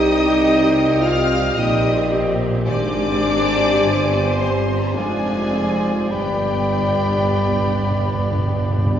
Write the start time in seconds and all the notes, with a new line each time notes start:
Already playing: C2 C3 G3 C4 D#4 G4 D#5 G5 D#6
1.01 F4 F5 F6
1.55 A#1 A#2 G3 C4 D#4 G4 D#5 G5 D#6
2.64 G#1 G#2 G3 C4 D4 G4 C5 D5 G#5 D6
3.80 G1 G2
4.39 C4 C5 C6
4.94 F1 F2 F3 G#3 D4 F4 G#4 D5 G#5
5.53 C4
6.11 G1 G2 G3 B3 D4 G4 D5 G5 B5
6.28 G2
6.35 G2
6.44 G2
6.53 G2
6.60 G2
6.68 G2
6.76 G2
6.84 G2
6.93 G2
7.01 G2
7.08 G2
7.17 G2
7.25 G2
7.33 G2
7.49 G2
7.58 G2
7.66 G2
7.75 G2
7.82 G2
7.91 G2
7.99 G2
8.06 G2
8.13 G2
8.21 G2
8.31 G2
8.38 G2
8.46 G2
8.54 G2
8.62 G2
8.70 G2
8.78 G2
8.86 G2
8.95 G2